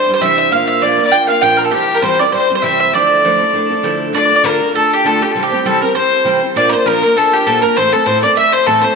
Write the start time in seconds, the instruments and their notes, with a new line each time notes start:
Already playing: mandolin C5, fiddle C5
0.07 steel-string acoustic guitar G3 D4 E4 C5
0.14 mandolin C5, fiddle C5
0.20 steel-string acoustic guitar C3 E3 G3 D4 E4 C5, mandolin E5, fiddle E5
0.38 mandolin E5
0.51 steel-string acoustic guitar A#2 F3 A#3 D4 F4 A#4, mandolin F5, fiddle F5
0.67 mandolin E5
0.81 steel-string acoustic guitar A#2 F3 A#3 D4 F4 A#4, mandolin D5, fiddle D5
0.97 steel-string acoustic guitar A#3 D4 F4 A#4
1.05 fiddle D5, mandolin D5
1.10 steel-string acoustic guitar A#3 D4 F4 A#4, mandolin G5, fiddle G5
1.27 steel-string acoustic guitar A#3 D4 F4 A#4, mandolin F5, fiddle F5
1.42 steel-string acoustic guitar A#2 F3 A#3 D4 F4 A#4, mandolin G5, fiddle G5
1.57 mandolin A#4, fiddle A#4
1.65 mandolin A4, fiddle A4
1.71 steel-string acoustic guitar C3 E3 G3 C4 E4 C5, mandolin G4, fiddle G4
1.94 mandolin A#4, fiddle A#4
2.02 steel-string acoustic guitar C3 E3 G3 C4 E4 C5, mandolin C5, fiddle C5
2.18 steel-string acoustic guitar G3 C4 E4 C5, mandolin D5, fiddle D5
2.32 steel-string acoustic guitar G3 C4 E4 C5, mandolin C5, fiddle C5
2.49 steel-string acoustic guitar G3 C4 E4 C5
2.55 mandolin C5, fiddle C5
2.62 steel-string acoustic guitar C3 E3 G3 C4 E4 C5, mandolin E5, fiddle E5
2.80 mandolin E5
2.93 steel-string acoustic guitar D3 F3 A3 D4 E4 A4, fiddle D5, mandolin D5
3.24 steel-string acoustic guitar D3 F3 A3 D4 E4 A4
3.39 steel-string acoustic guitar A3 D4 E4 A4
3.53 steel-string acoustic guitar A3 D4 E4 A4
3.69 steel-string acoustic guitar A3 D4 E4 A4
3.83 steel-string acoustic guitar D3 F3 A3 D4 E4 A4
4.13 steel-string acoustic guitar D3 A3 D4 F4 A4, mandolin D5, fiddle D5
4.25 mandolin D5
4.30 steel-string acoustic guitar D4 F4 A4
4.36 mandolin D5
4.43 steel-string acoustic guitar D3 A3 D4 F4 A4, mandolin A#4, fiddle A#4
4.60 steel-string acoustic guitar D4 F4 A4
4.74 steel-string acoustic guitar A3 D4 F4 A4, mandolin A4, fiddle A4
4.93 mandolin G4, fiddle G4
5.04 steel-string acoustic guitar D3 A3 D4 F4 A4, mandolin A4, fiddle A4
5.21 steel-string acoustic guitar D4 F4 A4, mandolin G4, fiddle G4
5.32 steel-string acoustic guitar C3 E3 G3 C4, fiddle A4
5.37 steel-string acoustic guitar E4 C5
5.43 mandolin G4, fiddle G4
5.51 steel-string acoustic guitar G3 C4 E4 C5, fiddle G4
5.65 steel-string acoustic guitar C3 E3 G3 C4 E4 C5, mandolin A4, fiddle A4
5.81 steel-string acoustic guitar G3 C4 E4 C5, mandolin A#4, fiddle A#4
5.95 steel-string acoustic guitar G3 C4 E4 C5, mandolin C5, fiddle C5
6.24 steel-string acoustic guitar C3 E3 G3 C4 E4 C5
6.41 steel-string acoustic guitar G3 C4 E4 C5
6.55 steel-string acoustic guitar A#2 F3 A#3 D4 F4 A#4, mandolin D5, fiddle D5
6.70 steel-string acoustic guitar D4 F4 A#4, fiddle A#4, mandolin C5
6.74 steel-string acoustic guitar A#3, fiddle C5
6.85 steel-string acoustic guitar A#2 F3 A#3 D4 F4 A#4, mandolin A#4, fiddle A#4
7.02 steel-string acoustic guitar A#3 D4 F4 A#4, mandolin A#4
7.16 steel-string acoustic guitar A#3 D4 F4 A#4, mandolin A4, fiddle A4
7.33 mandolin G4, fiddle G4
7.46 steel-string acoustic guitar A#2 F3 A#3 D4 F4 A#4, mandolin A4, fiddle A4
7.62 steel-string acoustic guitar A#3 D4 F4 A#4, mandolin A#4, fiddle A#4
7.76 steel-string acoustic guitar A2 E3 A3 C4 E4 A4, mandolin C5, fiddle C5
7.92 steel-string acoustic guitar A3 C4 E4 A4, mandolin A4, fiddle A4
8.06 steel-string acoustic guitar A2 E3 A3 C4 E4 A4, mandolin C5, fiddle C5
8.22 steel-string acoustic guitar A3 C4 E4 A4, fiddle D5, mandolin D5
8.35 steel-string acoustic guitar A3 C4 E4 A4, mandolin E5, fiddle E5
8.53 fiddle C5, mandolin C5
8.66 steel-string acoustic guitar A2 E3 A3 C4 E4 A4, mandolin A4, fiddle A4
8.81 steel-string acoustic guitar A3 C4 E4 A4, mandolin C5, fiddle C5